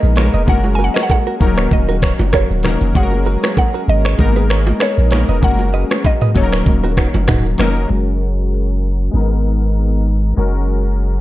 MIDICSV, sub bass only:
0, 0, Header, 1, 2, 480
1, 0, Start_track
1, 0, Key_signature, 6, "major"
1, 0, Tempo, 618557
1, 371, Time_signature, 4, 2, 24, 8
1, 8697, End_track
2, 0, Start_track
2, 0, Title_t, "Sub bass"
2, 0, Program_c, 0, 38
2, 24, Note_on_c, 0, 34, 100
2, 233, Note_off_c, 0, 34, 0
2, 263, Note_on_c, 0, 29, 88
2, 358, Note_off_c, 0, 29, 0
2, 372, Note_on_c, 0, 30, 112
2, 696, Note_off_c, 0, 30, 0
2, 1092, Note_on_c, 0, 27, 101
2, 1301, Note_off_c, 0, 27, 0
2, 1330, Note_on_c, 0, 27, 91
2, 1656, Note_off_c, 0, 27, 0
2, 1703, Note_on_c, 0, 30, 102
2, 1913, Note_off_c, 0, 30, 0
2, 1943, Note_on_c, 0, 27, 90
2, 2153, Note_off_c, 0, 27, 0
2, 2183, Note_on_c, 0, 29, 97
2, 2277, Note_off_c, 0, 29, 0
2, 2291, Note_on_c, 0, 30, 114
2, 2616, Note_off_c, 0, 30, 0
2, 3011, Note_on_c, 0, 32, 103
2, 3221, Note_off_c, 0, 32, 0
2, 3250, Note_on_c, 0, 32, 112
2, 3670, Note_off_c, 0, 32, 0
2, 3863, Note_on_c, 0, 34, 91
2, 4073, Note_off_c, 0, 34, 0
2, 4103, Note_on_c, 0, 29, 93
2, 4198, Note_off_c, 0, 29, 0
2, 4212, Note_on_c, 0, 30, 107
2, 4536, Note_off_c, 0, 30, 0
2, 4933, Note_on_c, 0, 27, 103
2, 5142, Note_off_c, 0, 27, 0
2, 5170, Note_on_c, 0, 27, 104
2, 5496, Note_off_c, 0, 27, 0
2, 5543, Note_on_c, 0, 30, 92
2, 5652, Note_on_c, 0, 27, 110
2, 5663, Note_off_c, 0, 30, 0
2, 5861, Note_off_c, 0, 27, 0
2, 5891, Note_on_c, 0, 29, 95
2, 6101, Note_off_c, 0, 29, 0
2, 6131, Note_on_c, 0, 30, 87
2, 7060, Note_off_c, 0, 30, 0
2, 7091, Note_on_c, 0, 32, 81
2, 8020, Note_off_c, 0, 32, 0
2, 8052, Note_on_c, 0, 30, 83
2, 8697, Note_off_c, 0, 30, 0
2, 8697, End_track
0, 0, End_of_file